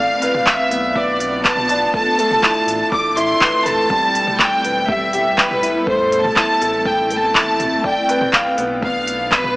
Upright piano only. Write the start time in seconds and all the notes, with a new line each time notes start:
Already playing: D5
0.22 B4
0.46 F5
0.71 B3
0.95 B3
1.45 B4
1.69 D5
1.94 A3
2.19 A3
2.43 E4
2.93 A4
3.17 E4
3.42 B4
3.66 A3
3.90 G3
4.39 G4
4.64 B4
4.88 G3
5.13 G4
5.38 B4
5.62 E4
5.87 A3
6.36 E4
6.61 A4
6.86 A3
7.12 A3
7.35 E4
7.84 D5
8.09 B4
8.34 F5
8.58 B3
8.82 B3
9.32 B4